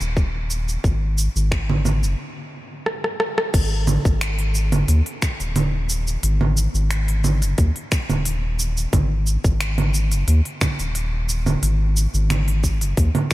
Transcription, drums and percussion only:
0.01 shaker soft
0.17 kick loud
0.17 shaker soft
0.50 shaker medium
0.69 shaker soft
0.84 kick loud
0.84 shaker soft
1.18 shaker medium
1.36 shaker soft
1.52 finger snap medium
1.52 kick loud
1.52 shaker soft
1.70 low conga medium
1.85 low conga medium
1.85 shaker medium
2.03 shaker soft
2.86 cross-stick medium
3.04 cross-stick medium
3.20 cross-stick medium
3.38 cross-stick medium
3.54 kick loud
3.54 open hi-hat medium
3.54 crash loud
3.54 shaker soft
3.87 low conga medium
3.87 shaker medium
4.05 kick loud
4.05 shaker soft
4.21 finger snap medium
4.21 open hi-hat medium
4.21 shaker soft
4.39 open hi-hat soft
4.55 shaker medium
4.72 open hi-hat soft
4.72 low conga medium
4.72 shaker soft
4.88 open hi-hat medium
4.88 shaker soft
5.06 open hi-hat soft
5.22 finger snap medium
5.22 kick loud
5.22 shaker medium
5.40 open hi-hat soft
5.40 shaker soft
5.56 open hi-hat medium
5.56 low conga medium
5.56 shaker soft
5.90 shaker medium
6.07 shaker soft
6.23 open hi-hat medium
6.23 shaker soft
6.41 low conga medium
6.57 shaker medium
6.75 shaker soft
6.91 finger snap medium
6.91 open hi-hat medium
6.91 shaker soft
7.08 open hi-hat soft
7.24 low conga medium
7.24 shaker medium
7.42 open hi-hat soft
7.42 shaker soft
7.58 kick loud
7.58 open hi-hat medium
7.58 shaker soft
7.76 open hi-hat soft
7.92 finger snap medium
7.92 kick loud
7.92 shaker medium
8.10 open hi-hat soft
8.10 low conga medium
8.10 shaker soft
8.25 open hi-hat medium
8.25 shaker soft
8.60 shaker medium
8.77 shaker soft
8.93 kick loud
8.93 open hi-hat medium
8.93 low conga medium
8.93 shaker soft
9.27 shaker medium
9.44 kick loud
9.44 shaker soft
9.61 finger snap medium
9.61 open hi-hat medium
9.61 shaker soft
9.78 open hi-hat soft
9.78 low conga medium
9.94 shaker medium
10.12 open hi-hat soft
10.12 shaker soft
10.28 open hi-hat medium
10.28 shaker soft
10.45 open hi-hat soft
10.61 finger snap medium
10.61 kick loud
10.61 low conga medium
10.61 shaker medium
10.79 open hi-hat soft
10.79 shaker soft
10.95 open hi-hat medium
10.95 shaker soft
11.29 shaker medium
11.46 low conga medium
11.46 shaker soft
11.63 open hi-hat medium
11.63 shaker soft
11.97 shaker medium
12.14 shaker soft
12.30 finger snap medium
12.30 open hi-hat medium
12.30 low conga medium
12.30 shaker soft
12.48 open hi-hat soft
12.64 kick medium
12.64 shaker medium
12.81 open hi-hat soft
12.81 shaker soft
12.97 kick loud
12.97 open hi-hat medium
12.97 shaker soft
13.15 open hi-hat soft
13.15 low conga medium

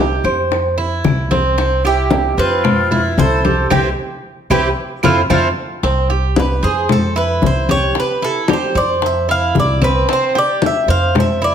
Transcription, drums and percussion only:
0.25 high bongo soft
0.25 high conga soft
0.25 claves medium
0.51 high bongo medium
0.51 high conga soft
0.78 high conga soft
1.04 high bongo soft
1.04 low bongo medium
1.04 high conga medium
1.04 claves medium
1.31 high bongo soft
1.31 high conga medium
1.58 high bongo medium
1.58 high conga soft
1.84 high bongo soft
1.84 high conga soft
1.84 claves medium
2.11 high bongo medium
2.11 high conga loud
2.38 high bongo soft
2.38 high conga soft
2.64 high bongo medium
2.64 high conga soft
2.64 low conga medium
2.64 claves medium
2.91 high conga soft
2.91 low conga medium
3.18 high bongo soft
3.18 low bongo medium
3.18 high conga medium
3.45 high bongo soft
3.45 high conga medium
3.71 low bongo loud
3.71 high conga loud
3.71 claves loud
4.51 low bongo medium
4.51 high conga medium
4.51 claves loud
5.03 low bongo loud
5.03 high conga medium
5.03 claves loud
5.30 low bongo loud
5.30 high conga loud
5.30 claves medium
5.83 high bongo medium
5.83 high conga soft
6.10 high bongo soft
6.10 high conga soft
6.36 high bongo medium
6.36 high conga loud
6.63 high bongo soft
6.63 high conga soft
6.89 high bongo medium
6.89 high conga soft
6.89 low conga medium
7.16 high conga soft
7.42 high bongo soft
7.42 low bongo medium
7.42 high conga medium
7.69 high bongo soft
7.69 high conga medium
7.95 high bongo medium
7.95 high conga soft
8.22 high bongo soft
8.22 high conga soft
8.48 high bongo medium
8.48 high conga loud
8.75 high bongo soft
8.75 high conga soft
9.02 high bongo medium
9.02 high conga soft
9.28 high conga soft
9.55 high bongo soft
9.55 low bongo medium
9.55 high conga medium
9.82 high bongo soft
9.82 high conga medium
10.09 high bongo medium
10.09 high conga soft
10.35 high bongo soft
10.35 high conga soft
10.62 high bongo medium
10.62 high conga loud
10.89 high bongo soft
10.89 high conga soft
11.15 high bongo medium
11.15 high conga soft
11.15 low conga medium
11.42 high conga soft

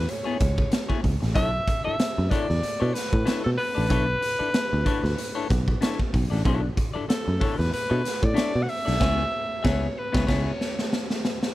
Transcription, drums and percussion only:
0.09 closed hi-hat medium
0.40 kick medium
0.40 snare soft
0.40 closed hi-hat medium
0.58 kick loud
0.72 snare loud
0.72 closed hi-hat medium
0.90 kick medium
1.04 kick medium
1.04 open hi-hat medium
1.22 snare soft
1.36 kick medium
1.36 closed hi-hat medium
1.68 kick medium
1.68 closed hi-hat medium
1.99 snare loud
1.99 closed hi-hat medium
2.31 kick loud
2.31 closed hi-hat medium
2.50 snare soft
2.63 closed hi-hat medium
2.95 snare soft
2.95 closed hi-hat medium
3.13 kick medium
3.27 snare loud
3.27 closed hi-hat medium
3.58 open hi-hat medium
3.90 kick loud
3.90 closed hi-hat medium
4.22 closed hi-hat medium
4.54 snare loud
4.54 closed hi-hat medium
4.86 kick medium
4.86 closed hi-hat medium
5.04 snare soft
5.18 closed hi-hat medium
5.50 kick medium
5.50 snare soft
5.50 closed hi-hat medium
5.68 kick loud
5.82 snare loud
5.82 closed hi-hat loud
5.99 kick medium
6.14 kick medium
6.14 open hi-hat medium
6.32 snare soft
6.45 kick loud
6.45 closed hi-hat medium
6.77 kick medium
6.77 closed hi-hat medium
7.10 snare loud
7.10 closed hi-hat medium
7.41 kick loud
7.41 open hi-hat medium
7.60 snare soft
7.73 closed hi-hat medium
8.05 snare soft
8.05 closed hi-hat medium
8.23 kick medium
8.36 snare loud
8.36 closed hi-hat medium
8.69 open hi-hat medium
8.87 snare soft
9.01 kick loud
9.01 snare loud
9.01 crash medium
9.65 kick loud
9.65 snare loud
10.15 kick loud
10.15 snare loud
10.28 kick loud
10.28 snare loud
10.28 crash medium
10.61 snare medium
10.79 snare medium
10.93 snare loud
11.10 snare medium
11.25 snare medium
11.43 snare medium

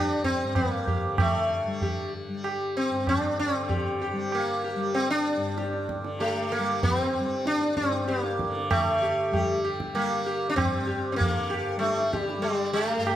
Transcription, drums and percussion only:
0.24 tabla ge soft
0.55 tabla na medium
0.55 tabla ge medium
0.87 tabla ge soft
1.18 tabla na medium
1.18 tabla ge medium
1.81 tabla tin medium
1.81 tabla ge medium
2.44 tabla na medium
3.07 tabla na medium
3.07 tabla ge medium
3.69 tabla tin medium
3.69 tabla ge medium
4.32 tabla na medium
4.95 tabla tin medium
5.58 tabla te medium
5.73 tabla te medium
5.89 tabla ke medium
6.05 tabla te medium
6.21 tabla tin medium
6.52 tabla na medium
6.83 tabla tin medium
6.83 tabla ge medium
7.46 tabla te medium
7.61 tabla te medium
7.77 tabla ke medium
7.92 tabla te medium
8.08 tabla te medium
8.23 tabla te soft
8.39 tabla ke medium
8.55 tabla te medium
8.71 tabla na loud
8.71 tabla ge medium
9.34 tabla tin medium
9.34 tabla ge medium
9.65 tabla na medium
9.80 tabla ke medium
9.95 tabla na medium
10.58 tabla na medium
10.58 tabla ge medium
11.20 tabla tin medium
11.20 tabla ge medium
11.51 tabla na medium
11.83 tabla te medium
11.98 tabla te medium
12.14 tabla ke medium
12.29 tabla te medium
12.44 tabla tin medium
12.76 tabla na medium
13.07 tabla na medium

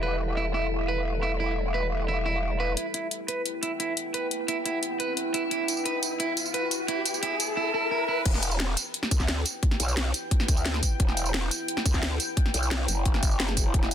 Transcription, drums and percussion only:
2.77 closed hi-hat medium
2.94 closed hi-hat medium
3.11 closed hi-hat medium
3.28 closed hi-hat medium
3.46 closed hi-hat medium
3.63 closed hi-hat loud
3.80 closed hi-hat medium
3.97 closed hi-hat medium
4.14 closed hi-hat medium
4.31 closed hi-hat medium
4.48 closed hi-hat medium
4.66 closed hi-hat medium
4.83 closed hi-hat medium
5.00 closed hi-hat medium
5.17 closed hi-hat medium
5.34 closed hi-hat medium
5.51 closed hi-hat medium
5.68 closed hi-hat medium
5.68 tambourine medium
5.77 tambourine soft
5.86 closed hi-hat medium
6.03 closed hi-hat medium
6.03 tambourine medium
6.20 closed hi-hat medium
6.37 closed hi-hat medium
6.37 tambourine medium
6.46 tambourine soft
6.54 closed hi-hat medium
6.71 closed hi-hat medium
6.71 tambourine medium
6.88 closed hi-hat medium
7.06 closed hi-hat medium
7.06 tambourine medium
7.14 tambourine soft
7.23 closed hi-hat medium
7.40 closed hi-hat medium
7.40 tambourine medium
8.26 kick loud
8.26 closed hi-hat medium
8.26 crash loud
8.34 snare soft
8.43 closed hi-hat medium
8.43 tambourine medium
8.51 tambourine soft
8.60 snare loud
8.60 closed hi-hat medium
8.77 closed hi-hat loud
8.77 tambourine medium
8.94 closed hi-hat medium
9.03 snare soft
9.11 kick loud
9.11 closed hi-hat medium
9.11 tambourine medium
9.20 kick medium
9.20 snare soft
9.20 tambourine soft
9.28 snare loud
9.28 closed hi-hat medium
9.46 closed hi-hat medium
9.46 tambourine medium
9.63 kick loud
9.63 closed hi-hat medium
9.71 snare soft
9.80 closed hi-hat medium
9.80 tambourine medium
9.88 tambourine soft
9.97 snare loud
9.97 closed hi-hat medium
10.14 closed hi-hat loud
10.14 tambourine medium
10.31 kick loud
10.31 closed hi-hat medium
10.40 snare medium
10.48 kick loud
10.48 closed hi-hat medium
10.48 tambourine medium
10.57 tambourine soft
10.66 snare loud
10.66 closed hi-hat medium
10.74 snare medium
10.83 kick medium
10.83 closed hi-hat medium
10.83 tambourine medium
11.00 kick loud
11.00 closed hi-hat medium
11.08 snare soft
11.17 closed hi-hat medium
11.17 tambourine medium
11.26 tambourine soft
11.34 snare loud
11.34 closed hi-hat medium
11.51 closed hi-hat loud
11.51 tambourine medium
11.68 closed hi-hat medium
11.77 snare soft
11.86 kick loud
11.86 closed hi-hat medium
11.86 tambourine medium
11.94 kick medium
11.94 snare soft
11.94 tambourine soft
12.03 snare loud
12.03 closed hi-hat medium
12.20 closed hi-hat medium
12.20 tambourine medium
12.37 kick loud
12.37 closed hi-hat medium
12.46 snare soft
12.54 closed hi-hat medium
12.54 tambourine medium
12.63 tambourine soft
12.71 snare loud
12.71 closed hi-hat medium
12.88 closed hi-hat loud
12.88 tambourine medium
13.06 kick loud
13.06 closed hi-hat medium
13.14 snare soft
13.23 kick loud
13.23 closed hi-hat medium
13.23 tambourine medium
13.31 tambourine soft
13.40 snare loud
13.40 closed hi-hat medium
13.48 snare soft
13.57 kick medium
13.57 closed hi-hat medium
13.57 tambourine medium
13.74 kick loud
13.74 closed hi-hat medium
13.83 snare soft
13.91 closed hi-hat medium
13.91 tambourine medium

